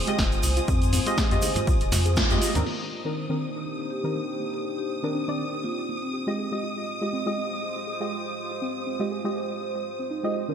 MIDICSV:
0, 0, Header, 1, 9, 480
1, 0, Start_track
1, 0, Key_signature, -3, "minor"
1, 0, Tempo, 495868
1, 660, Time_signature, 4, 2, 24, 8
1, 10207, End_track
2, 0, Start_track
2, 0, Title_t, "Violin section"
2, 0, Program_c, 0, 48
2, 0, Note_on_c, 0, 87, 86
2, 2570, Note_off_c, 0, 87, 0
2, 2582, Note_on_c, 0, 87, 74
2, 10207, Note_off_c, 0, 87, 0
2, 10207, End_track
3, 0, Start_track
3, 0, Title_t, "Ambient pad"
3, 0, Program_c, 1, 92
3, 0, Note_on_c, 1, 65, 85
3, 0, Note_on_c, 1, 72, 77
3, 0, Note_on_c, 1, 80, 85
3, 2579, Note_off_c, 1, 80, 0
3, 2582, Note_on_c, 1, 60, 80
3, 2766, Note_on_c, 1, 67, 89
3, 3646, Note_off_c, 1, 72, 0
3, 3771, Note_off_c, 1, 65, 0
3, 3824, Note_on_c, 1, 87, 70
3, 6180, Note_on_c, 1, 65, 65
3, 6182, Note_off_c, 1, 67, 0
3, 6397, Note_on_c, 1, 72, 84
3, 7104, Note_off_c, 1, 60, 0
3, 7145, Note_off_c, 1, 87, 0
3, 10207, Note_off_c, 1, 65, 0
3, 10207, Note_off_c, 1, 72, 0
3, 10207, End_track
4, 0, Start_track
4, 0, Title_t, "Marimba"
4, 0, Program_c, 2, 12
4, 3780, Note_on_c, 2, 67, 84
4, 3996, Note_off_c, 2, 67, 0
4, 4392, Note_on_c, 2, 67, 82
4, 4606, Note_off_c, 2, 67, 0
4, 4631, Note_on_c, 2, 67, 85
4, 4842, Note_off_c, 2, 67, 0
4, 5458, Note_on_c, 2, 65, 88
4, 5805, Note_off_c, 2, 65, 0
4, 5831, Note_on_c, 2, 60, 84
4, 6233, Note_off_c, 2, 60, 0
4, 10207, End_track
5, 0, Start_track
5, 0, Title_t, "Analog synth pad"
5, 0, Program_c, 3, 89
5, 0, Note_on_c, 3, 56, 76
5, 0, Note_on_c, 3, 60, 74
5, 0, Note_on_c, 3, 65, 73
5, 0, Note_on_c, 3, 72, 84
5, 2541, Note_off_c, 3, 60, 0
5, 2542, Note_off_c, 3, 56, 0
5, 2542, Note_off_c, 3, 65, 0
5, 2542, Note_off_c, 3, 72, 0
5, 2578, Note_on_c, 3, 62, 72
5, 2578, Note_on_c, 3, 63, 72
5, 2578, Note_on_c, 3, 72, 90
5, 2579, Note_on_c, 3, 58, 77
5, 6143, Note_off_c, 3, 62, 0
5, 6143, Note_off_c, 3, 63, 0
5, 6143, Note_off_c, 3, 72, 0
5, 6144, Note_off_c, 3, 58, 0
5, 6179, Note_on_c, 3, 65, 67
5, 6179, Note_on_c, 3, 67, 69
5, 6180, Note_on_c, 3, 56, 78
5, 6180, Note_on_c, 3, 75, 84
5, 8081, Note_off_c, 3, 75, 0
5, 8099, Note_on_c, 3, 72, 82
5, 10207, Note_off_c, 3, 56, 0
5, 10207, Note_off_c, 3, 65, 0
5, 10207, Note_off_c, 3, 67, 0
5, 10207, Note_off_c, 3, 72, 0
5, 10207, End_track
6, 0, Start_track
6, 0, Title_t, "Synth pluck"
6, 0, Program_c, 4, 84
6, 180, Note_on_c, 4, 65, 80
6, 306, Note_off_c, 4, 65, 0
6, 552, Note_on_c, 4, 65, 71
6, 597, Note_off_c, 4, 65, 0
6, 661, Note_on_c, 4, 60, 99
6, 752, Note_off_c, 4, 60, 0
6, 901, Note_on_c, 4, 60, 80
6, 992, Note_off_c, 4, 60, 0
6, 1139, Note_on_c, 4, 68, 79
6, 1231, Note_off_c, 4, 68, 0
6, 1379, Note_on_c, 4, 68, 81
6, 1471, Note_off_c, 4, 68, 0
6, 1619, Note_on_c, 4, 65, 80
6, 1745, Note_off_c, 4, 65, 0
6, 1991, Note_on_c, 4, 68, 75
6, 2036, Note_off_c, 4, 68, 0
6, 2098, Note_on_c, 4, 65, 78
6, 2225, Note_off_c, 4, 65, 0
6, 2339, Note_on_c, 4, 65, 78
6, 2394, Note_off_c, 4, 65, 0
6, 2579, Note_on_c, 4, 58, 93
6, 2671, Note_off_c, 4, 58, 0
6, 2819, Note_on_c, 4, 58, 77
6, 2911, Note_off_c, 4, 58, 0
6, 3059, Note_on_c, 4, 67, 81
6, 3151, Note_off_c, 4, 67, 0
6, 3299, Note_on_c, 4, 67, 75
6, 3391, Note_off_c, 4, 67, 0
6, 3539, Note_on_c, 4, 62, 76
6, 3665, Note_off_c, 4, 62, 0
6, 3911, Note_on_c, 4, 62, 68
6, 3956, Note_off_c, 4, 62, 0
6, 4019, Note_on_c, 4, 58, 93
6, 4111, Note_off_c, 4, 58, 0
6, 4258, Note_on_c, 4, 58, 72
6, 4351, Note_off_c, 4, 58, 0
6, 4500, Note_on_c, 4, 67, 79
6, 4592, Note_off_c, 4, 67, 0
6, 4739, Note_on_c, 4, 67, 71
6, 4831, Note_off_c, 4, 67, 0
6, 4980, Note_on_c, 4, 62, 79
6, 5106, Note_off_c, 4, 62, 0
6, 5351, Note_on_c, 4, 62, 75
6, 5397, Note_off_c, 4, 62, 0
6, 5460, Note_on_c, 4, 58, 92
6, 5551, Note_off_c, 4, 58, 0
6, 5699, Note_on_c, 4, 58, 72
6, 5791, Note_off_c, 4, 58, 0
6, 5938, Note_on_c, 4, 67, 75
6, 6031, Note_off_c, 4, 67, 0
6, 6178, Note_on_c, 4, 68, 69
6, 6271, Note_off_c, 4, 68, 0
6, 6419, Note_on_c, 4, 65, 79
6, 6545, Note_off_c, 4, 65, 0
6, 6792, Note_on_c, 4, 65, 74
6, 6837, Note_off_c, 4, 65, 0
6, 6900, Note_on_c, 4, 60, 95
6, 6992, Note_off_c, 4, 60, 0
6, 7140, Note_on_c, 4, 60, 77
6, 7232, Note_off_c, 4, 60, 0
6, 7380, Note_on_c, 4, 68, 75
6, 7472, Note_off_c, 4, 68, 0
6, 7620, Note_on_c, 4, 68, 69
6, 7712, Note_off_c, 4, 68, 0
6, 7860, Note_on_c, 4, 65, 76
6, 7986, Note_off_c, 4, 65, 0
6, 8233, Note_on_c, 4, 65, 72
6, 8277, Note_off_c, 4, 65, 0
6, 8341, Note_on_c, 4, 60, 99
6, 8432, Note_off_c, 4, 60, 0
6, 8581, Note_on_c, 4, 60, 74
6, 8672, Note_off_c, 4, 60, 0
6, 8821, Note_on_c, 4, 68, 76
6, 8912, Note_off_c, 4, 68, 0
6, 9060, Note_on_c, 4, 68, 75
6, 9152, Note_off_c, 4, 68, 0
6, 9299, Note_on_c, 4, 65, 77
6, 9425, Note_off_c, 4, 65, 0
6, 9673, Note_on_c, 4, 60, 70
6, 9775, Note_off_c, 4, 60, 0
6, 9780, Note_on_c, 4, 63, 77
6, 9872, Note_off_c, 4, 63, 0
6, 10020, Note_on_c, 4, 65, 74
6, 10075, Note_off_c, 4, 65, 0
6, 10207, End_track
7, 0, Start_track
7, 0, Title_t, "Synth stab"
7, 0, Program_c, 5, 62
7, 68, Note_on_c, 5, 56, 95
7, 72, Note_on_c, 5, 65, 84
7, 74, Note_on_c, 5, 67, 88
7, 78, Note_on_c, 5, 75, 103
7, 218, Note_off_c, 5, 56, 0
7, 220, Note_off_c, 5, 65, 0
7, 221, Note_off_c, 5, 67, 0
7, 223, Note_off_c, 5, 75, 0
7, 1028, Note_on_c, 5, 56, 97
7, 1031, Note_on_c, 5, 65, 89
7, 1034, Note_on_c, 5, 67, 82
7, 1038, Note_on_c, 5, 75, 108
7, 1231, Note_off_c, 5, 56, 0
7, 1232, Note_off_c, 5, 65, 0
7, 1234, Note_off_c, 5, 67, 0
7, 1236, Note_off_c, 5, 75, 0
7, 1269, Note_on_c, 5, 56, 89
7, 1272, Note_on_c, 5, 65, 84
7, 1275, Note_on_c, 5, 67, 85
7, 1278, Note_on_c, 5, 75, 98
7, 1418, Note_off_c, 5, 56, 0
7, 1420, Note_off_c, 5, 65, 0
7, 1421, Note_off_c, 5, 67, 0
7, 1423, Note_off_c, 5, 75, 0
7, 2228, Note_on_c, 5, 56, 98
7, 2232, Note_on_c, 5, 65, 89
7, 2234, Note_on_c, 5, 67, 87
7, 2238, Note_on_c, 5, 75, 105
7, 2431, Note_off_c, 5, 56, 0
7, 2432, Note_off_c, 5, 65, 0
7, 2434, Note_off_c, 5, 67, 0
7, 2435, Note_off_c, 5, 75, 0
7, 2467, Note_on_c, 5, 51, 79
7, 2470, Note_on_c, 5, 60, 76
7, 2474, Note_on_c, 5, 62, 71
7, 2477, Note_on_c, 5, 70, 93
7, 2818, Note_off_c, 5, 51, 0
7, 2819, Note_off_c, 5, 60, 0
7, 2821, Note_off_c, 5, 62, 0
7, 2823, Note_off_c, 5, 70, 0
7, 2948, Note_on_c, 5, 51, 82
7, 2951, Note_on_c, 5, 60, 74
7, 2954, Note_on_c, 5, 62, 74
7, 2958, Note_on_c, 5, 70, 88
7, 3151, Note_off_c, 5, 51, 0
7, 3152, Note_off_c, 5, 60, 0
7, 3154, Note_off_c, 5, 62, 0
7, 3155, Note_off_c, 5, 70, 0
7, 3188, Note_on_c, 5, 51, 95
7, 3191, Note_on_c, 5, 60, 83
7, 3194, Note_on_c, 5, 62, 85
7, 3198, Note_on_c, 5, 70, 100
7, 3338, Note_off_c, 5, 51, 0
7, 3340, Note_off_c, 5, 60, 0
7, 3341, Note_off_c, 5, 62, 0
7, 3343, Note_off_c, 5, 70, 0
7, 3907, Note_on_c, 5, 51, 89
7, 3911, Note_on_c, 5, 60, 80
7, 3914, Note_on_c, 5, 62, 77
7, 3917, Note_on_c, 5, 70, 98
7, 4058, Note_off_c, 5, 51, 0
7, 4059, Note_off_c, 5, 60, 0
7, 4061, Note_off_c, 5, 62, 0
7, 4062, Note_off_c, 5, 70, 0
7, 4867, Note_on_c, 5, 51, 85
7, 4870, Note_on_c, 5, 60, 85
7, 4874, Note_on_c, 5, 62, 81
7, 4877, Note_on_c, 5, 70, 98
7, 5070, Note_off_c, 5, 51, 0
7, 5072, Note_off_c, 5, 60, 0
7, 5073, Note_off_c, 5, 62, 0
7, 5075, Note_off_c, 5, 70, 0
7, 5108, Note_on_c, 5, 51, 84
7, 5111, Note_on_c, 5, 60, 80
7, 5114, Note_on_c, 5, 62, 77
7, 5117, Note_on_c, 5, 74, 94
7, 5258, Note_off_c, 5, 51, 0
7, 5259, Note_off_c, 5, 60, 0
7, 5261, Note_off_c, 5, 62, 0
7, 5262, Note_off_c, 5, 74, 0
7, 6067, Note_on_c, 5, 56, 96
7, 6071, Note_on_c, 5, 65, 85
7, 6074, Note_on_c, 5, 67, 88
7, 6077, Note_on_c, 5, 75, 104
7, 6270, Note_off_c, 5, 56, 0
7, 6272, Note_off_c, 5, 65, 0
7, 6273, Note_off_c, 5, 67, 0
7, 6275, Note_off_c, 5, 75, 0
7, 6308, Note_on_c, 5, 56, 74
7, 6311, Note_on_c, 5, 65, 73
7, 6315, Note_on_c, 5, 67, 68
7, 6317, Note_on_c, 5, 75, 86
7, 6759, Note_off_c, 5, 56, 0
7, 6760, Note_off_c, 5, 65, 0
7, 6762, Note_off_c, 5, 67, 0
7, 6763, Note_off_c, 5, 75, 0
7, 6788, Note_on_c, 5, 56, 82
7, 6791, Note_on_c, 5, 65, 75
7, 6794, Note_on_c, 5, 67, 74
7, 6797, Note_on_c, 5, 75, 93
7, 6991, Note_off_c, 5, 56, 0
7, 6992, Note_off_c, 5, 65, 0
7, 6994, Note_off_c, 5, 67, 0
7, 6995, Note_off_c, 5, 75, 0
7, 7027, Note_on_c, 5, 56, 92
7, 7030, Note_on_c, 5, 65, 82
7, 7033, Note_on_c, 5, 67, 86
7, 7037, Note_on_c, 5, 75, 102
7, 7177, Note_off_c, 5, 56, 0
7, 7179, Note_off_c, 5, 65, 0
7, 7181, Note_off_c, 5, 67, 0
7, 7182, Note_off_c, 5, 75, 0
7, 7748, Note_on_c, 5, 56, 86
7, 7751, Note_on_c, 5, 65, 85
7, 7754, Note_on_c, 5, 67, 80
7, 7757, Note_on_c, 5, 75, 96
7, 7898, Note_off_c, 5, 56, 0
7, 7899, Note_off_c, 5, 65, 0
7, 7901, Note_off_c, 5, 67, 0
7, 7903, Note_off_c, 5, 75, 0
7, 8707, Note_on_c, 5, 56, 90
7, 8710, Note_on_c, 5, 65, 82
7, 8713, Note_on_c, 5, 67, 81
7, 8716, Note_on_c, 5, 75, 96
7, 8910, Note_off_c, 5, 56, 0
7, 8912, Note_off_c, 5, 65, 0
7, 8913, Note_off_c, 5, 67, 0
7, 8915, Note_off_c, 5, 75, 0
7, 8947, Note_on_c, 5, 56, 84
7, 8950, Note_on_c, 5, 65, 79
7, 8953, Note_on_c, 5, 67, 81
7, 8956, Note_on_c, 5, 75, 96
7, 9097, Note_off_c, 5, 56, 0
7, 9099, Note_off_c, 5, 65, 0
7, 9100, Note_off_c, 5, 67, 0
7, 9102, Note_off_c, 5, 75, 0
7, 9907, Note_on_c, 5, 56, 92
7, 9910, Note_on_c, 5, 65, 84
7, 9913, Note_on_c, 5, 67, 81
7, 9916, Note_on_c, 5, 75, 95
7, 10110, Note_off_c, 5, 56, 0
7, 10112, Note_off_c, 5, 65, 0
7, 10113, Note_off_c, 5, 67, 0
7, 10115, Note_off_c, 5, 75, 0
7, 10148, Note_on_c, 5, 51, 76
7, 10151, Note_on_c, 5, 60, 71
7, 10154, Note_on_c, 5, 62, 68
7, 10158, Note_on_c, 5, 70, 83
7, 10207, Note_off_c, 5, 51, 0
7, 10207, Note_off_c, 5, 60, 0
7, 10207, Note_off_c, 5, 62, 0
7, 10207, Note_off_c, 5, 70, 0
7, 10207, End_track
8, 0, Start_track
8, 0, Title_t, "Sub bass"
8, 0, Program_c, 6, 38
8, 180, Note_on_c, 6, 29, 106
8, 340, Note_off_c, 6, 29, 0
8, 420, Note_on_c, 6, 36, 92
8, 580, Note_off_c, 6, 36, 0
8, 660, Note_on_c, 6, 41, 99
8, 954, Note_off_c, 6, 41, 0
8, 1273, Note_on_c, 6, 41, 96
8, 1340, Note_off_c, 6, 41, 0
8, 1620, Note_on_c, 6, 36, 82
8, 1703, Note_off_c, 6, 36, 0
8, 1752, Note_on_c, 6, 29, 101
8, 1820, Note_off_c, 6, 29, 0
8, 1859, Note_on_c, 6, 41, 106
8, 2153, Note_off_c, 6, 41, 0
8, 2232, Note_on_c, 6, 41, 89
8, 2300, Note_off_c, 6, 41, 0
8, 2470, Note_on_c, 6, 39, 83
8, 2539, Note_off_c, 6, 39, 0
8, 10207, End_track
9, 0, Start_track
9, 0, Title_t, "Drums"
9, 69, Note_on_c, 9, 82, 39
9, 72, Note_on_c, 9, 42, 67
9, 166, Note_off_c, 9, 82, 0
9, 169, Note_off_c, 9, 42, 0
9, 180, Note_on_c, 9, 36, 106
9, 182, Note_on_c, 9, 38, 117
9, 188, Note_on_c, 9, 82, 51
9, 277, Note_off_c, 9, 36, 0
9, 279, Note_off_c, 9, 38, 0
9, 285, Note_off_c, 9, 82, 0
9, 309, Note_on_c, 9, 82, 34
9, 312, Note_on_c, 9, 42, 36
9, 405, Note_off_c, 9, 82, 0
9, 408, Note_off_c, 9, 42, 0
9, 417, Note_on_c, 9, 82, 93
9, 419, Note_on_c, 9, 46, 90
9, 424, Note_on_c, 9, 63, 56
9, 513, Note_off_c, 9, 82, 0
9, 516, Note_off_c, 9, 46, 0
9, 520, Note_off_c, 9, 63, 0
9, 547, Note_on_c, 9, 82, 36
9, 551, Note_on_c, 9, 42, 69
9, 643, Note_off_c, 9, 82, 0
9, 647, Note_off_c, 9, 42, 0
9, 659, Note_on_c, 9, 82, 46
9, 660, Note_on_c, 9, 36, 113
9, 756, Note_off_c, 9, 82, 0
9, 757, Note_off_c, 9, 36, 0
9, 791, Note_on_c, 9, 42, 39
9, 800, Note_on_c, 9, 82, 38
9, 887, Note_off_c, 9, 42, 0
9, 897, Note_off_c, 9, 82, 0
9, 898, Note_on_c, 9, 46, 103
9, 902, Note_on_c, 9, 64, 88
9, 904, Note_on_c, 9, 82, 89
9, 995, Note_off_c, 9, 46, 0
9, 998, Note_off_c, 9, 64, 0
9, 1001, Note_off_c, 9, 82, 0
9, 1031, Note_on_c, 9, 42, 72
9, 1034, Note_on_c, 9, 82, 38
9, 1127, Note_off_c, 9, 42, 0
9, 1131, Note_off_c, 9, 82, 0
9, 1140, Note_on_c, 9, 36, 112
9, 1140, Note_on_c, 9, 38, 108
9, 1140, Note_on_c, 9, 82, 46
9, 1237, Note_off_c, 9, 36, 0
9, 1237, Note_off_c, 9, 38, 0
9, 1237, Note_off_c, 9, 82, 0
9, 1271, Note_on_c, 9, 42, 54
9, 1280, Note_on_c, 9, 82, 31
9, 1368, Note_off_c, 9, 42, 0
9, 1373, Note_off_c, 9, 82, 0
9, 1373, Note_on_c, 9, 82, 85
9, 1379, Note_on_c, 9, 46, 93
9, 1381, Note_on_c, 9, 63, 76
9, 1470, Note_off_c, 9, 82, 0
9, 1476, Note_off_c, 9, 46, 0
9, 1478, Note_off_c, 9, 63, 0
9, 1504, Note_on_c, 9, 64, 97
9, 1511, Note_on_c, 9, 42, 72
9, 1512, Note_on_c, 9, 82, 37
9, 1601, Note_off_c, 9, 64, 0
9, 1608, Note_off_c, 9, 42, 0
9, 1609, Note_off_c, 9, 82, 0
9, 1620, Note_on_c, 9, 36, 113
9, 1624, Note_on_c, 9, 82, 46
9, 1717, Note_off_c, 9, 36, 0
9, 1721, Note_off_c, 9, 82, 0
9, 1747, Note_on_c, 9, 82, 34
9, 1751, Note_on_c, 9, 42, 55
9, 1843, Note_off_c, 9, 82, 0
9, 1848, Note_off_c, 9, 42, 0
9, 1859, Note_on_c, 9, 63, 86
9, 1860, Note_on_c, 9, 46, 104
9, 1862, Note_on_c, 9, 38, 58
9, 1862, Note_on_c, 9, 82, 92
9, 1956, Note_off_c, 9, 46, 0
9, 1956, Note_off_c, 9, 63, 0
9, 1959, Note_off_c, 9, 38, 0
9, 1959, Note_off_c, 9, 82, 0
9, 1989, Note_on_c, 9, 82, 37
9, 1992, Note_on_c, 9, 42, 65
9, 2086, Note_off_c, 9, 82, 0
9, 2089, Note_off_c, 9, 42, 0
9, 2094, Note_on_c, 9, 82, 50
9, 2100, Note_on_c, 9, 36, 115
9, 2102, Note_on_c, 9, 38, 117
9, 2191, Note_off_c, 9, 82, 0
9, 2197, Note_off_c, 9, 36, 0
9, 2199, Note_off_c, 9, 38, 0
9, 2229, Note_on_c, 9, 82, 33
9, 2231, Note_on_c, 9, 42, 38
9, 2326, Note_off_c, 9, 82, 0
9, 2328, Note_off_c, 9, 42, 0
9, 2339, Note_on_c, 9, 46, 91
9, 2345, Note_on_c, 9, 82, 86
9, 2435, Note_off_c, 9, 46, 0
9, 2442, Note_off_c, 9, 82, 0
9, 2469, Note_on_c, 9, 64, 89
9, 2471, Note_on_c, 9, 42, 69
9, 2474, Note_on_c, 9, 82, 41
9, 2566, Note_off_c, 9, 64, 0
9, 2568, Note_off_c, 9, 42, 0
9, 2571, Note_off_c, 9, 82, 0
9, 2579, Note_on_c, 9, 49, 76
9, 2676, Note_off_c, 9, 49, 0
9, 10207, End_track
0, 0, End_of_file